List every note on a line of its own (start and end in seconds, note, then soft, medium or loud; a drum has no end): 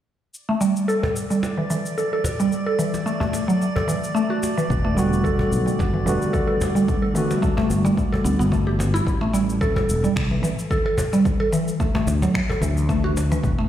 0.33 9.07 D5 medium
0.33 shaker soft
0.49 0.61 A3 medium
0.61 0.75 G3 medium
0.61 shaker medium
0.76 shaker soft
0.88 1.02 A4 medium
0.88 shaker soft
1.03 1.29 A4 medium
1.03 cajon bass medium
1.16 shaker medium
1.30 1.42 G3 medium
1.30 shaker soft
1.43 cajon slap medium
1.43 shaker soft
1.58 1.69 E3 medium
1.70 1.96 E3 medium
1.70 shaker medium
1.86 shaker soft
1.98 2.11 A4 medium
1.98 shaker soft
2.13 2.38 A4 medium
2.24 cajon bass medium
2.24 cajon slap medium
2.24 shaker medium
2.40 2.51 G3 medium
2.40 shaker soft
2.52 shaker soft
2.66 2.74 A4 medium
2.79 3.05 E3 medium
2.79 shaker medium
2.94 cajon slap medium
2.94 shaker soft
3.06 3.19 A3 medium
3.06 shaker soft
3.20 3.33 A3 loud
3.20 cajon bass medium
3.33 cajon slap medium
3.33 shaker medium
3.48 3.55 F#3 loud
3.48 shaker soft
3.62 shaker soft
3.76 3.83 A4 medium
3.76 cajon bass medium
3.88 4.14 E3 medium
3.88 shaker medium
4.04 shaker soft
4.15 4.29 A3 loud
4.15 shaker soft
4.30 4.42 F#4 medium
4.43 cajon slap medium
4.43 shaker medium
4.58 4.70 E3 loud
4.58 shaker soft
4.70 5.44 E1 medium
4.70 kick loud
4.70 shaker soft
4.85 4.97 A3 medium
4.95 6.02 D3 medium
4.95 6.03 G3 medium
4.95 5.11 G3 medium
4.95 6.03 A3 medium
4.95 6.04 B3 medium
4.95 shaker medium
4.99 6.04 F#4 loud
5.13 shaker soft
5.24 5.38 A4 medium
5.24 kick loud
5.24 shaker soft
5.39 5.65 A4 medium
5.39 cajon bass medium
5.52 5.70 B1 medium
5.52 shaker medium
5.66 5.78 G3 medium
5.66 shaker soft
5.79 6.07 G1 medium
5.79 kick medium
5.79 cajon slap medium
5.79 shaker soft
5.94 6.05 E3 medium
6.05 6.16 E1 medium
6.05 6.86 D3 medium
6.05 6.32 E3 loud
6.05 6.87 G3 medium
6.05 6.87 A3 medium
6.05 6.88 B3 medium
6.05 6.88 F#4 medium
6.05 shaker medium
6.22 shaker soft
6.33 6.46 A4 medium
6.33 kick loud
6.33 shaker soft
6.47 6.74 A4 medium
6.61 cajon bass medium
6.61 cajon slap medium
6.61 shaker medium
6.75 6.87 G3 medium
6.75 shaker soft
6.88 kick loud
6.88 shaker soft
7.02 7.10 A4 medium
7.14 9.04 D3 medium
7.14 7.41 E3 medium
7.14 9.05 G3 medium
7.14 9.05 A3 medium
7.14 9.05 B3 medium
7.14 shaker medium
7.18 9.06 F#4 medium
7.31 cajon slap medium
7.31 shaker soft
7.42 7.56 A3 medium
7.42 kick loud
7.42 shaker soft
7.57 7.69 A3 loud
7.57 cajon bass medium
7.70 7.88 G1 medium
7.70 cajon slap medium
7.70 shaker medium
7.85 7.92 G3 loud
7.85 shaker soft
7.97 kick medium
7.97 shaker soft
8.12 8.20 A4 medium
8.12 cajon bass medium
8.24 8.34 D2 medium
8.24 8.38 B3 medium
8.24 shaker medium
8.39 8.99 G1 medium
8.39 8.51 B3 medium
8.39 shaker soft
8.52 8.66 A3 medium
8.52 kick medium
8.52 shaker soft
8.67 8.78 G4 medium
8.79 8.93 E3 medium
8.79 cajon slap medium
8.79 shaker medium
8.94 9.01 E4 loud
8.94 shaker soft
9.07 9.81 A1 medium
9.07 kick loud
9.07 shaker soft
9.21 9.33 A3 medium
9.34 9.48 G3 medium
9.34 shaker medium
9.50 shaker soft
9.61 9.75 A4 medium
9.61 kick loud
9.61 shaker soft
9.76 10.02 A4 medium
9.76 cajon bass medium
9.89 10.07 E1 medium
9.89 shaker medium
10.04 10.15 G3 medium
10.04 shaker soft
10.16 10.43 C2 medium
10.16 finger snap medium
10.16 kick medium
10.16 cajon slap medium
10.16 shaker soft
10.31 10.42 E3 medium
10.43 10.52 A1 loud
10.43 10.69 E3 loud
10.43 shaker medium
10.59 shaker soft
10.71 10.84 A4 medium
10.71 kick loud
10.71 shaker soft
10.86 11.11 A4 medium
10.98 cajon bass medium
10.98 cajon slap medium
10.98 shaker medium
11.13 11.24 G3 medium
11.13 shaker soft
11.25 kick loud
11.25 shaker soft
11.40 11.47 A4 medium
11.53 11.78 E3 medium
11.53 shaker medium
11.68 shaker soft
11.80 11.93 A3 medium
11.80 kick loud
11.80 shaker soft
11.95 12.06 A3 loud
11.95 cajon bass loud
12.07 12.25 D2 medium
12.07 cajon slap medium
12.07 shaker medium
12.22 12.29 F#3 medium
12.22 cajon bass medium
12.22 shaker soft
12.34 finger snap medium
12.34 kick loud
12.34 shaker soft
12.50 12.56 A4 medium
12.50 cajon bass medium
12.61 13.36 D2 medium
12.61 12.87 E3 medium
12.61 cajon slap soft
12.61 shaker medium
12.77 shaker soft
12.89 13.03 A3 loud
12.89 kick loud
12.89 shaker soft
13.04 13.15 F#4 medium
13.17 cajon slap medium
13.17 shaker medium
13.32 13.44 E3 loud
13.32 shaker soft
13.44 13.69 E1 medium
13.44 kick loud
13.44 shaker soft
13.59 13.69 A3 medium